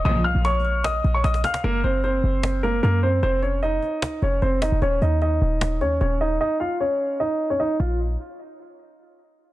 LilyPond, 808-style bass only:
\new Staff \with { instrumentName = "808-style bass" } { \clef bass \time 4/4 \key bes \minor \tempo 4 = 151 bes,,8 c,16 bes,,4.~ bes,,16 bes,,8 bes,,8 r8 | ges,,8 ges,,4 ges,,4. ges,4 | f,,4. r4 f,,8 f,,8. f,,16 | ees,,8 ees,4 ees,,4 ees,8 ees,,4 |
r2. r8 bes,,8~ | bes,,8 r2. r8 | }